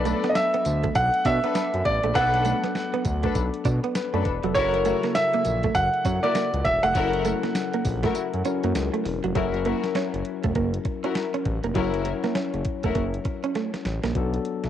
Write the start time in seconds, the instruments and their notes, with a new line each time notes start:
Already playing: analog synth bass B1, tine electric piano F#3 B3 D4 A4, grand piano D5
0.05 clean electric guitar A3, string section D4 A4 B4, closed hi-hat, tambourine
0.24 clean electric guitar B3, snare, closed hi-hat
0.29 grand piano D#5
0.35 grand piano E5, snare, closed hi-hat, tambourine
0.54 clean electric guitar B3, closed hi-hat
0.65 analog synth bass D2, muted clean electric guitar stroke, closed hi-hat, tambourine
0.84 clean electric guitar A3, kick, closed hi-hat
0.95 analog synth bass B1, grand piano F#5, muted clean electric guitar stroke, kick, closed hi-hat, tambourine
1.14 closed hi-hat
1.25 analog synth bass B2, clean electric guitar D4, grand piano E5, kick, closed hi-hat, tambourine
1.44 clean electric guitar B3, string section D4 A4 B4, closed hi-hat
1.55 clean electric guitar B3, snare, closed hi-hat, tambourine
1.74 analog synth bass F#2, closed hi-hat
1.85 analog synth bass A1, grand piano D5, muted clean electric guitar stroke, kick, closed hi-hat
2.03 analog synth bass A#1, clean electric guitar A3, closed hi-hat
2.15 analog synth bass B1, tine electric piano F#3 B3 D4 A4, string section D4 A4 B4, grand piano F#5, kick, closed hi-hat, tambourine
2.34 muted clean electric guitar stroke, closed hi-hat
2.45 clean electric guitar A3, closed hi-hat, tambourine
2.64 clean electric guitar B3, snare, closed hi-hat
2.75 snare, closed hi-hat, tambourine
2.94 clean electric guitar B3, closed hi-hat
3.05 analog synth bass D2, muted clean electric guitar stroke, kick, closed hi-hat, tambourine
3.23 clean electric guitar A3, string section D4 A4 B4, kick, closed hi-hat
3.35 analog synth bass B1, muted clean electric guitar stroke, kick, closed hi-hat, tambourine
3.54 closed hi-hat
3.65 analog synth bass B2, clean electric guitar D4, kick, closed hi-hat, tambourine
3.84 clean electric guitar B3, closed hi-hat
3.95 tine electric piano B4, snare, closed hi-hat, tambourine
4.13 analog synth bass F#2, clean electric guitar A3, string section D4 A4 B4, tine electric piano D5, closed hi-hat
4.25 analog synth bass E1, muted clean electric guitar stroke, kick, closed hi-hat
4.43 analog synth bass F1, clean electric guitar F#3, tine electric piano A4, closed hi-hat
4.55 analog synth bass F#1, tine electric piano C#3 F#3 E4 A#4, string section E4 F#4 A#4, grand piano C#5, kick, closed hi-hat, tambourine
4.74 muted clean electric guitar stroke, closed hi-hat
4.85 clean electric guitar A3, string section E4 F#4 A#4, closed hi-hat, tambourine
5.03 clean electric guitar A#3, snare, closed hi-hat
5.15 grand piano E5, snare, closed hi-hat, tambourine
5.34 clean electric guitar A#3, closed hi-hat
5.45 analog synth bass A#1, muted clean electric guitar stroke, closed hi-hat, tambourine
5.63 clean electric guitar A3, kick, closed hi-hat
5.75 analog synth bass F#1, grand piano F#5, muted clean electric guitar stroke, kick, closed hi-hat, tambourine
5.94 closed hi-hat
6.05 analog synth bass F#2, clean electric guitar C#4, kick, closed hi-hat, tambourine
6.23 clean electric guitar A#3, string section E4 F#4 A#4, grand piano D5, closed hi-hat
6.35 clean electric guitar A#3, snare, closed hi-hat, tambourine
6.53 analog synth bass C#2, closed hi-hat
6.65 analog synth bass E1, grand piano E5, muted clean electric guitar stroke, kick, closed hi-hat
6.83 analog synth bass F1, clean electric guitar A3, grand piano F#5, closed hi-hat
6.95 analog synth bass F#1, tine electric piano F#3 C#4 E4 A4, string section E4 F#4 A#4, kick, closed hi-hat, tambourine
7.04 tine electric piano A#4
7.13 muted clean electric guitar stroke, closed hi-hat
7.25 clean electric guitar A3, closed hi-hat, tambourine
7.43 clean electric guitar A#3, snare, closed hi-hat
7.55 snare, closed hi-hat, tambourine
7.73 clean electric guitar A#3, closed hi-hat
7.85 analog synth bass A#1, muted clean electric guitar stroke, kick, open hi-hat, tambourine
8.03 clean electric guitar A3, string section E4 F#4 A#4, kick, snare, closed hi-hat
8.15 muted clean electric guitar stroke, closed hi-hat, tambourine
8.34 analog synth bass F#2, closed hi-hat
8.45 tine electric piano F#3 C#4 E4 A#4, clean electric guitar C#4, closed hi-hat, tambourine
8.63 analog synth bass F#2, clean electric guitar A#3, closed hi-hat
8.75 analog synth bass C#2, snare, closed hi-hat, tambourine
8.94 clean electric guitar A3, closed hi-hat
9.05 analog synth bass E1, muted clean electric guitar stroke, open hi-hat
9.24 analog synth bass F1, clean electric guitar F#3, closed hi-hat
9.35 analog synth bass F#1, tine electric piano F#3 C#4 E4 A4, clean electric guitar F#3, string section E4 F#4 A#4, kick, closed hi-hat
9.44 tine electric piano A#4
9.54 muted clean electric guitar stroke, closed hi-hat
9.65 clean electric guitar A#3, string section E4 F#4 A#4, closed hi-hat
9.84 snare, closed hi-hat
9.95 clean electric guitar C#4, snare, closed hi-hat
10.14 analog synth bass F#1, muted clean electric guitar stroke, closed hi-hat
10.25 closed hi-hat
10.43 analog synth bass E1, clean electric guitar A3, kick, closed hi-hat
10.55 analog synth bass F#1, clean electric guitar A#3, kick, closed hi-hat
10.74 closed hi-hat
10.85 muted clean electric guitar stroke, kick, closed hi-hat
11.04 clean electric guitar C#4, string section E4 F#4 A#4, closed hi-hat
11.15 snare, closed hi-hat
11.34 clean electric guitar C#4, closed hi-hat
11.45 analog synth bass A1, muted clean electric guitar stroke, kick, closed hi-hat
11.64 analog synth bass F1, clean electric guitar A#3, closed hi-hat
11.75 analog synth bass F#1, tine electric piano F#3 C#4 E4 C#5, clean electric guitar F#3, string section E4 F#4 A#4, kick, closed hi-hat
11.94 closed hi-hat
12.05 muted clean electric guitar stroke, closed hi-hat
12.24 clean electric guitar A#3, snare, closed hi-hat
12.35 clean electric guitar C#4, snare, closed hi-hat
12.54 analog synth bass F#1, muted clean electric guitar stroke, closed hi-hat
12.65 kick, closed hi-hat
12.83 analog synth bass E1, clean electric guitar A3, string section E4 F#4 A#4, kick, closed hi-hat
12.95 analog synth bass F#1, clean electric guitar A#3, kick, closed hi-hat
13.14 closed hi-hat
13.25 muted clean electric guitar stroke, kick, closed hi-hat
13.44 clean electric guitar C#4, closed hi-hat
13.55 clean electric guitar A3, snare, closed hi-hat
13.74 muted clean electric guitar stroke, snare, closed hi-hat
13.85 analog synth bass A1, snare, closed hi-hat
14.03 analog synth bass A#1, clean electric guitar A#3, snare, closed hi-hat
14.15 analog synth bass B1, tine electric piano F#3 B3 D4 A4, kick, closed hi-hat
14.34 closed hi-hat
14.45 closed hi-hat
14.64 analog synth bass B1, snare, closed hi-hat